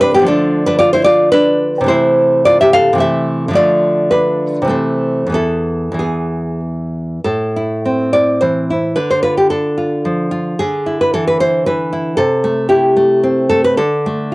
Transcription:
nylon-string guitar
Already playing: C3 E3 A3
0.01 D4 B4
0.14 B3 G4
0.19 D3 F3
0.25 A3 D4 A4
0.66 D4 B4
0.79 F4 D5
0.93 E4 C5
1.04 F4 D5
1.32 D4 B4
1.81 C3 E3
1.86 A3 E4 C5
2.45 F4 D5
2.61 G4 E5
2.73 A4 F5
2.93 C3 E3
2.98 A3 A4 E5
3.48 D3 F3
3.54 A3 F4 D5
4.11 D4 B4
4.62 C3 E3
4.67 A3 C4 A4
5.27 E2 E3
5.32 B3 E4 A4
5.92 E2 E3
5.99 B3 G#4
7.24 A2 A4
7.56 E4
7.85 C4
8.13 E4 D5
8.41 E3 C5
8.70 E4
8.96 D3 B4
9.11 C5
9.23 F4 B4
9.37 G4
9.50 D4 A4
9.78 F4
10.05 F3
10.31 F4
10.59 D3 G#4
10.86 E4
11.01 B4
11.14 E3 A4
11.27 B4
11.40 E4 C5
11.66 E3 B4
11.93 E4
12.17 C3 A4
12.44 A3
12.69 E4 G4
12.97 A3
13.24 C4
13.49 A3 A4
13.64 B4
13.77 D3 A4
14.06 A3

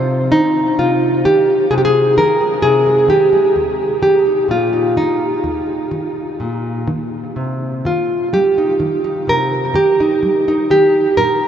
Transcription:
nylon-string guitar
Already playing: C3 C5
0.31 D#3 D#4
0.79 C3 F4
1.25 D#3 G4
1.71 C3 G#4
1.78 G4
1.85 G#4
2.17 D#3 A#4
2.41 G#3
2.62 C3 G#4
2.86 G#3
3.08 D#3 G4
3.33 G#3
3.56 D#2
4.02 D#3 G4
4.26 D#4
4.48 A#2 F4
4.73 D#4
4.96 D#3 D#4
5.44 D#2
5.91 D#3
6.40 A#2
6.88 D#3
7.36 C3
7.85 D#3 F4
8.33 G3 G4
8.58 D#4
8.80 D#3
9.04 D#4
9.27 C3 A#4
9.74 D#3 G4
10.00 D#4
10.23 G3
10.48 D#4
10.70 D#3 G4
11.17 A#2 A#4

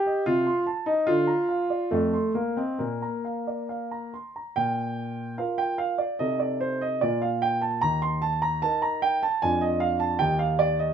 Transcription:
grand piano
Already playing: G4
0.06 D#5
0.26 C3 F4
0.47 C6
0.66 A5
0.86 D#4 D#5
1.07 D3 F4
1.27 A#5
1.49 F5
1.70 D5
1.91 F2 A3
2.13 C6
2.34 A#3 F5
2.57 C4 D#5
2.79 A#2 A#3
3.02 A#5
3.25 F5
3.47 D5
3.69 F5
3.91 A#5
4.14 C6
4.36 A#5
4.56 A#2 G5
5.38 F4 A#4 F5
5.58 G5
5.78 F5
5.98 D5
6.19 C3 D#4 A4 D#5
6.40 D5
6.61 C5
6.81 D#5
7.01 A#2 F4 A#4 D5
7.22 F5
7.42 G5
7.61 A5
7.81 D#2 A#5
8.02 C6
8.22 A5
8.42 A#5
8.62 D#4 A#4 A5
8.82 A#5
9.02 G5
9.23 A5
9.42 F2 D4 F4 G#5
9.61 D#5
9.80 F5
10.00 A5
10.19 D#2 D#4 G4 G5
10.39 F5
10.59 D5
10.79 D#5

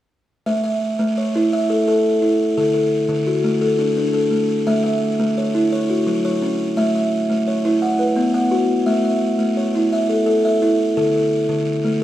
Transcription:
kalimba
0.46 A3 E5
0.64 E5
0.99 A3
1.18 C#5
1.35 E4
1.53 E5
1.70 A4
1.88 A4
2.22 E4
2.57 D3 A4
2.74 A4
3.09 D3
3.27 F#4
3.44 A3
3.61 A4
3.79 D4
3.97 D4
4.13 A4
4.31 A3
4.67 A3 E5
4.84 E5
5.19 A3
5.38 C#5
5.55 E4
5.73 C#5
5.90 F#4
6.07 F#3
6.25 C#5
6.42 C#4
6.77 A3 E5
6.95 E5
7.30 A3
7.48 C#5
7.65 E4
7.82 F#5
7.99 B4
8.16 B3
8.34 F#5
8.51 F#4
8.86 A3 E5
9.04 E5
9.39 A3
9.57 C#5
9.75 E4
9.93 E5
10.09 A4
10.26 A4
10.45 E5
10.62 E4
10.97 D3 A4
11.15 A4
11.49 D3
11.85 A3

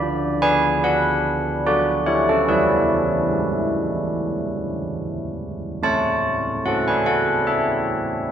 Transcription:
church bells
Already playing: D3 D5 B5
0.02 D4
0.42 B4 G#5
0.84 B4 F#5
1.67 F#4 D5
2.06 E4 C#5
2.29 C#4 A4
2.49 E3 E4 B4
3.31 G#3
5.83 A3 C#5 A5
6.66 C#4 A4 F#5
6.88 B4 G#5
7.06 A4 F#5
7.47 A4 E5

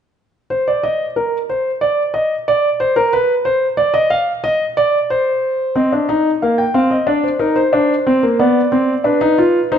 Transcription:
grand piano
0.50 C5
0.68 D5
0.83 D#5
1.16 A#4
1.49 C5
1.81 D5
2.14 D#5
2.48 D5
2.80 C5
2.96 A#4
3.13 B4
3.45 C5
3.77 D5
3.94 D#5
4.10 F5
4.44 D#5
4.77 D5
5.10 C5
5.76 C4 D#5
5.92 D4
6.09 D#4
6.42 A#3 F5
6.58 G5
6.74 C4 F5
6.91 D#5
7.07 D4 D5
7.24 C5
7.39 D#4 A#4
7.56 C5
7.73 D4
8.07 C4
8.23 A#3
8.39 B3 D5
8.72 C4
9.04 D4 B4
9.21 D#4
9.38 F4
9.72 D#4 C5

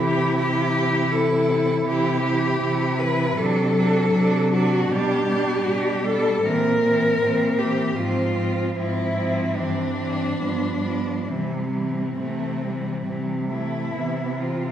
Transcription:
cello
Already playing: C3 E3 E4
0.00 G4
0.38 G4
1.11 A4
1.85 C3 E3 E4 G4
2.22 E3 E4
2.58 C3 E3
2.63 E4
2.97 E3 E4 B4
3.35 C3 F#3 D4 A4
3.75 F#3 D4
4.13 C3 F#3 D4
4.52 F#3 D4 F#4
4.89 B2 G3 D4 G4
5.28 G3 D4
5.66 B2 G3 D4
6.04 G3 D4 A4
6.43 A#2 E3 C4 A#4
6.81 E3 C4
7.19 A#2 E3 C4
7.57 E3 C4 G4
7.96 G#2 F3 C4 F4
8.35 F3 C4
8.75 G#2 F3 C4 E4
9.16 F3 C4
9.56 G2 E3 C4 D4
9.97 E3 C4
10.40 G2 F3 B3
10.82 F3 B3
11.27 C3 E3 G3 C4
11.72 E3 G3
12.18 C3 E3 A3
12.63 E3 G3
13.06 C3 E3 G3
13.49 E3 A3 E4
13.93 C3 E3 B3
14.37 E3 C4 F4

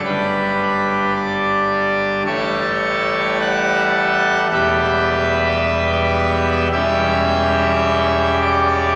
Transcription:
pipe organ
0.04 G1 G2 G3 D4 B4
1.15 D5
2.26 A1 A2 G3 A3 A4 C#5
3.41 F#5
4.51 E1 E2 G3 B3 G4 E5
6.73 E1 E2 G3 C#4 G4 E5
8.42 D5

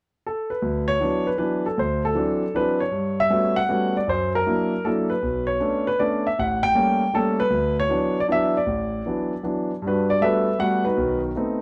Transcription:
grand piano
0.27 A4
0.50 B4
0.62 D2
0.88 C#5
1.00 E3 F#3 B3 D4
1.27 B4
1.38 E3 F#3 B3 D4 B4
1.66 A4
1.77 D2 C5
2.05 A4
2.15 E3 F#3 C4 D4
2.54 E3 F#3 C4 D4 B4
2.80 C#5
2.91 G2
3.20 E5
3.30 G3 A3 B3 C#4 F#4
3.56 F#5
3.69 G3 A3 B3 C#4 F#4
3.97 D5
4.07 F#2 C5
4.35 A#4
4.46 F#3 A#3 D4 E4
4.84 F#3 A#3 D4 E4 A4
5.10 B4
5.22 B1
5.47 C#5
5.60 A3 B3 C#4 D4
5.87 B4
5.99 A3 B3 C#4 D4 D5
6.27 E5
6.39 A1 F#5
6.63 G5
6.75 G3 A3 A#3 C#4
7.13 G3 A3 A#3 C#4 A4
7.40 B4
7.50 D2
7.80 C#5
7.89 E3 F#3 B3 D4
8.20 D5
8.28 E3 F#3 B3 D4 E5
8.57 D5
8.66 A1
9.06 E3 F#3 B3 D4
9.43 E3 F#3 B3 D4
9.82 G2
9.86 D4 F#4 B4
10.10 D5
10.21 G3 A3 B3 F#4 A4 B4 E5
10.58 G3 A3 B3 F#4 F#5
10.85 D#4 F#4 B4
10.97 B1 D#3
11.36 A3 B3 C4 D#4

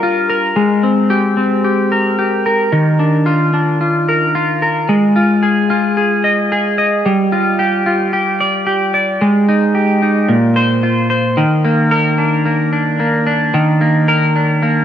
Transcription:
clean electric guitar
Already playing: G3 D4 A#4
0.03 F4
0.30 A#4
0.56 G#3
0.84 C4
1.10 G4
1.37 C4
1.65 G4
1.92 A#4
2.19 G4
2.46 A#4
2.72 D#3
2.99 D4
3.26 F4
3.54 D4
3.81 F4
4.08 A#4
4.35 F4
4.62 A#4
4.89 G#3
5.16 F4
5.42 G#4
5.70 F4
5.97 G#4
6.24 D#5
6.52 G#4
6.78 D#5
7.06 G3
7.32 F4
7.59 G4
7.86 F4
8.13 G4
8.40 D5
8.67 G4
8.94 D5
9.21 G#3
9.48 D#4
9.75 G4
10.02 D#4
10.29 A#2
10.56 C5
10.83 F4
11.10 C5
11.37 D#3
11.65 A#3
11.91 A#4
12.18 D4
12.45 A#3
12.72 D4
13.00 A#3
13.27 D4
13.54 D#3
13.81 A#3
14.08 A#4
14.36 D4
14.63 A#3

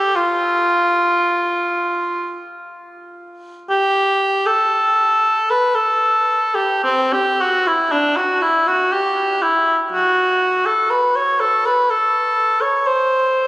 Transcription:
cor anglais
Already playing: G4
0.15 F4
3.70 G4
4.46 A4
5.50 B4
5.75 A4
6.55 G4
6.83 C4
7.13 G4
7.41 F#4
7.67 E4
7.92 D4
8.16 F#4
8.42 E4
8.67 F#4
8.92 G4
9.42 E4
9.92 F#4
10.66 A4
10.90 B4
11.16 C#5
11.40 A4
11.66 B4
11.90 A4
12.61 C#5
12.86 C5

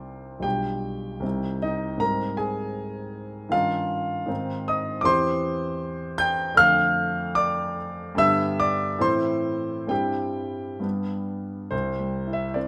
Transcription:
grand piano
Already playing: C2 G3 C4 D#4 C5 D5 C6 D6
0.40 B1 G3 D4 F4 G4 G5
1.20 C2 G3 C4 D#4
1.62 D#4 D#5
1.98 G#2 G3 C4 D#4 A#4 A#5
2.37 G#4 G#5
3.49 G2 D#3 C#4 D#4 F4 F5
4.26 G#2 D#3 C4 D#4
4.68 D#5 D#6
5.01 E2 E3 C4 D6
5.05 G4 C5 C6
6.18 G5 G6
6.55 F2 D3 A3 A4 F5 F6
7.35 D5 D6
8.15 G2 D3 B3 G4 E5 E6
8.60 D5 D6
8.99 A2 E3 C4 E4 C5 C6
9.87 G2 G3 C4 E4 G4 G5
10.79 G2 G3 B3 D4
11.71 C2 C5
12.00 G3
12.27 E4
12.33 E5
12.54 C4 D5

